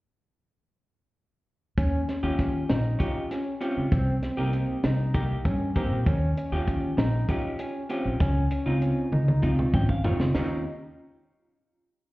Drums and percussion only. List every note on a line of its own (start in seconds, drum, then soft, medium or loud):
1.77 kick loud
1.77 closed hi-hat medium
1.77 shaker soft
2.09 snare soft
2.09 closed hi-hat medium
2.39 kick medium
2.39 snare soft
2.39 closed hi-hat medium
2.69 snare loud
2.69 closed hi-hat medium
3.00 kick medium
3.00 closed hi-hat medium
3.00 shaker medium
3.31 snare soft
3.31 closed hi-hat medium
3.31 shaker soft
3.61 closed hi-hat medium
3.61 shaker soft
3.92 kick loud
3.92 closed hi-hat medium
3.92 shaker medium
4.22 snare soft
4.22 closed hi-hat medium
4.53 closed hi-hat medium
4.84 snare loud
4.84 closed hi-hat medium
5.14 kick medium
5.14 closed hi-hat medium
5.14 shaker soft
5.45 kick loud
5.45 closed hi-hat medium
5.45 shaker soft
5.76 kick medium
5.76 closed hi-hat medium
5.76 shaker soft
6.06 kick loud
6.06 closed hi-hat medium
6.06 shaker soft
6.37 closed hi-hat medium
6.68 kick medium
6.68 closed hi-hat medium
6.98 snare loud
6.98 closed hi-hat medium
7.28 kick medium
7.28 closed hi-hat medium
7.28 shaker soft
7.59 closed hi-hat medium
7.59 shaker soft
7.90 closed hi-hat medium
7.90 shaker soft
8.20 kick loud
8.20 closed hi-hat medium
8.20 shaker medium
8.51 closed hi-hat medium
8.51 shaker soft
8.82 closed hi-hat medium
9.13 high tom medium
9.28 high tom medium
9.43 kick medium
9.43 shaker medium
9.59 mid tom medium
9.74 kick medium
9.74 mid tom medium
9.89 kick medium
10.04 floor tom medium
10.04 shaker soft
10.20 snare medium
10.35 snare loud
10.35 china medium
10.35 shaker medium